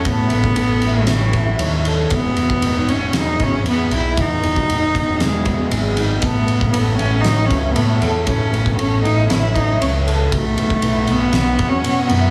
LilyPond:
<<
  \new Staff \with { instrumentName = "Clean electric guitar" } { \time 4/4 \key e \major \tempo 4 = 117 <a e' a' cis''>8 b8 a'8 e'8 cis''8 e'8 cis''8 a'8 | e8 e8 dis'8 b8 gis'8 b8 gis'8 dis'8 | e8 e8 dis'8 b8 gis'8 b8 gis'8 dis'8 | a8 b8 a'8 e'8 cis''8 e'8 cis''8 a'8 |
a8 b8 a'8 e'8 cis''8 e'8 cis''8 a'8 | b,8 e8 e'8 b8 fis'8 b8 fis'8 e'8 | }
  \new Staff \with { instrumentName = "Cello" } { \time 4/4 \key e \major b2 e4. r8 | b4. cis'8 dis'8 cis'8 b8 e'8 | dis'2 gis4. r8 | b4 b8 cis'8 dis'8 cis'8 b8 r8 |
cis'4 cis'8 dis'8 e'8 dis'8 cis'8 r8 | a4. b8~ \tuplet 3/2 { b4 cis'8~ } cis'8 b8 | }
  \new Staff \with { instrumentName = "Picked electric bass" } { \clef bass \time 4/4 \key e \major a,8 a,,8 a,,8 a,,8 a,,4 dis,4 | e,,8 e,,8 e,,8 e,,8 e,,8 gis,,8 e,8 b,,8 | e,8 e,,8 e,,8 e,,8 e,,4 gis,,4 | a,,8 a,,8 a,,8 a,,8 a,,8 cis,8 a,8 e,8 |
a,8 a,,8 a,,8 a,,8 a,,4 cis,4 | b,,8 b,,8 b,,8 b,,8 b,,8 e,8 b,8 fis,8 | }
  \new DrumStaff \with { instrumentName = "Drums" } \drummode { \time 4/4 <bd cymr>8 cymr16 bd16 cymr8 cymr8 <cymr sn>8 <bd cymr>8 cymr8 cymr8 | <bd cymr>8 cymr16 bd16 cymr8 cymr8 <cymr sn>8 <bd cymr>8 cymr8 cymr8 | <bd cymr>8 cymr16 bd16 cymr8 <bd cymr>8 <cymr sn>8 <bd cymr>8 cymr8 cymr8 | <bd cymr>8 cymr16 bd16 cymr8 cymr8 <cymr sn>8 <bd cymr>8 cymr8 cymr8 |
<bd cymr>8 cymr16 bd16 cymr8 cymr8 <cymr sn>8 <bd cymr>8 cymr8 cymr8 | <bd cymr>8 cymr16 bd16 cymr8 cymr8 <cymr sn>8 <bd cymr>8 cymr8 cymr8 | }
>>